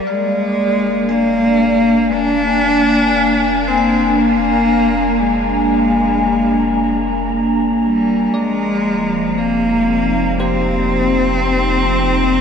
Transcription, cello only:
X:1
M:4/4
L:1/8
Q:1/4=58
K:Bbmix
V:1 name="Cello"
A,2 B,2 D3 C | B,2 A,4 z G, | A,2 B,2 C4 |]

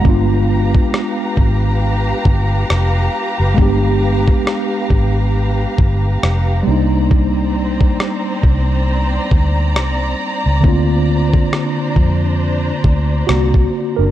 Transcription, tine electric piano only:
X:1
M:4/4
L:1/16
Q:"Swing 16ths" 1/4=68
K:Gphr
V:1 name="Tine electric piano"
z16 | z16 | z16 | z12 [^A,^F]3 [D^A] |]
V:2 name="Tine electric piano"
[A,=B,DF]16 | [A,=B,DG]12- [A,B,DG]2 [G,_B,DE]2- | [G,B,DE]12- [G,B,DE]2 z2 | [D,^A,C^E]16 |]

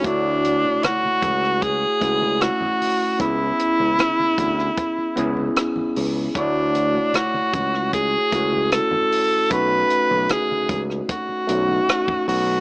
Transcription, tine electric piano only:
X:1
M:4/4
L:1/16
Q:1/4=76
K:Dlyd
V:1 name="Tine electric piano"
[A,EFc]6- [A,EFc] z3 [A,CEF]6 | [B,CEG]6- [B,CEG] z3 [B,CEG]6 | [A,EFc]6- [A,EFc] z3 [A,CEF]6 | [A,C^DF]6- [A,CDF] z3 [A,CDF]6 |]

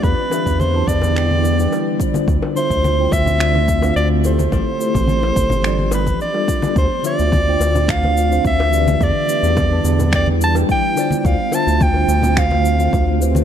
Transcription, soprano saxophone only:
X:1
M:4/4
L:1/16
Q:1/4=107
K:Ddor
V:1 name="Soprano saxophone"
B4 c2 d8 z2 | z2 c4 e6 d2 c2- | c8- c2 B2 d4 | c2 d6 f4 e4 |
d8 d2 a2 g3- g/2 g/2 | f2 a2 g4 f6 z2 |]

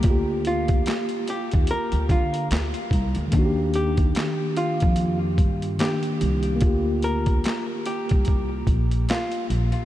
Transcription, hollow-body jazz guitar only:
X:1
M:4/4
L:1/16
Q:"Swing 16ths" 1/4=73
K:Eblyd
V:1 name="Hollow-body jazz guitar"
z2 F2 z2 G z B2 F2 z4 | z2 G4 F3 z3 G2 z2 | z2 B4 G3 z3 F2 z2 |]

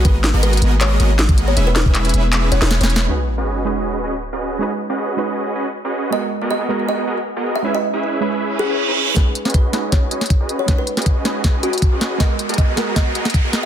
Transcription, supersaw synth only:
X:1
M:4/4
L:1/16
Q:"Swing 16ths" 1/4=158
K:B
V:1 name="Supersaw synth"
[B,FGAd] z2 [B,FGAd]3 [B,FGAd]4 [B,FGAd] z2 [B,FGAd]3 | [CEGBe] z2 [CEGBe]3 [CEGBe]4 [CEGBf] [CEGBc]2 [CEGBc]3 | [CFGBd] z2 [CFGBd]3 [CFGBd]4 [CFGBd] z2 [CFGBd]3 | [CFGBd] z2 [CFGBd]3 [CFGBd]4 [CFGBd] z2 [CFGBd]3 |
[B,FGAd] z2 [B,FGAd]3 [B,FGAd]4 [B,FGAd] z2 [B,FGAd]3 | [CEGBe] z2 [CEGBe]3 [CEGBe]4 [CEGBf] [CEGBc]2 [CEGBc]3 | [CFGBd] z2 [CFGBd]3 [CFGBd]4 [CFGBd] z2 [CFGBd]3 | [CFGBd] z2 [CFGBd]3 [CFGBd]4 [CFGBd] z2 [CFGBd]3 |
[B,FGAd] z2 [B,FGAd]3 [B,FGAd]4 [B,FGAd] z2 [B,FGAd]3 |]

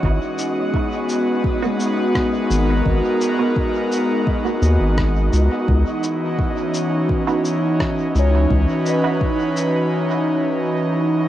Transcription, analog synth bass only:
X:1
M:4/4
L:1/16
Q:1/4=85
K:G#m
V:1 name="Analog synth bass" clef=bass
G,,, z12 z G,,,2 | G,,, z8 z D,, G,,,3 C,, z | C,, z12 z C,,2 | C,, z12 z3 |]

